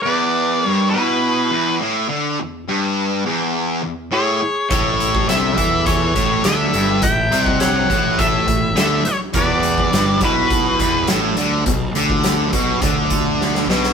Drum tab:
HH |----------------|----------------|x-x-x-x-x-x-x-x-|x-x-x-x-x-x-x-x-|
SD |----------------|----------------|----o-------o---|----o-------o---|
BD |----------------|----------------|o--o--o-o-o-----|o--o--o-o-o-----|

HH |x-x-x-x-x-x-x-x-|x-x-x-x-x-x-----|
SD |----o-------o---|----o-------oooo|
BD |o--o--o-o-o-----|o--o--o-o-o-----|